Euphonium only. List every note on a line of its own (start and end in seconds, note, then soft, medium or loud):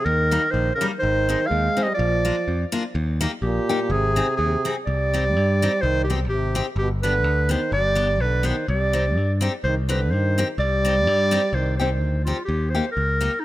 0.05 0.50 D#3 medium
0.50 0.74 D#3 medium
0.75 0.86 C#3 medium
1.00 1.50 D#3 medium
1.49 1.87 G#3 medium
1.85 1.95 G3 medium
1.96 2.66 F3 medium
3.44 3.94 A#2 medium
3.92 4.39 C3 loud
4.43 4.75 C3 medium
4.87 5.85 G3 medium
5.83 6.07 D#3 medium
6.09 6.19 B2 medium
6.31 6.64 C3 medium
6.80 6.90 B2 medium
7.04 7.52 D3 medium
7.51 7.73 D#3 medium
7.76 8.22 G3 medium
8.21 8.48 D3 medium
8.47 8.68 D#3 medium
8.69 9.35 G3 medium
9.65 9.76 D#3 medium
9.89 10.15 D3 medium
10.14 10.48 D#3 medium
10.62 11.57 G3 loud
11.56 11.78 D#3 medium
11.79 12.23 D#3 medium